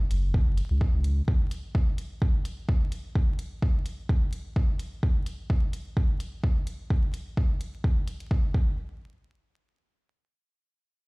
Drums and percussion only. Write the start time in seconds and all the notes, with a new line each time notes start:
0.11 closed hi-hat
0.34 kick
0.57 closed hi-hat
0.81 kick
1.04 closed hi-hat
1.28 kick
1.51 closed hi-hat
1.75 kick
1.98 closed hi-hat
2.22 kick
2.45 closed hi-hat
2.69 kick
2.92 closed hi-hat
3.15 kick
3.39 closed hi-hat
3.62 kick
3.86 closed hi-hat
4.09 kick
4.33 closed hi-hat
4.56 kick
4.79 closed hi-hat
5.03 kick
5.26 closed hi-hat
5.50 kick
5.73 closed hi-hat
5.97 kick
6.20 closed hi-hat
6.44 kick
6.67 closed hi-hat
6.90 kick
7.14 closed hi-hat
7.37 kick
7.61 closed hi-hat
7.84 kick
8.08 closed hi-hat
8.20 closed hi-hat
8.31 kick
8.54 kick